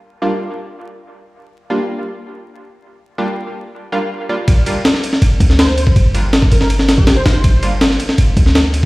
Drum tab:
RD |----------------|----------------|----------------|x-x-x-x-x-x-x-x-|
SD |----------------|----------------|----------------|----oo-o---oo---|
BD |----------------|----------------|----------------|o---------o----o|

RD |x-x-x-x-x-x-x-x-|x-x-x-x-x-x-x-x-|
SD |----o--o-oo-o-o-|----oo-o---oo---|
BD |o----o-----o----|o---------o-----|